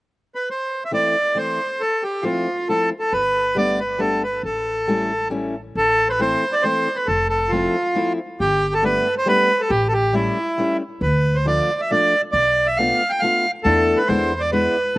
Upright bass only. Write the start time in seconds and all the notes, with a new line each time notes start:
3.13 G1
4.43 A1
5.75 A1
7.08 F1
8.40 G1
9.70 A1
11.01 D2
12.33 B1
13.65 E2
14.09 E2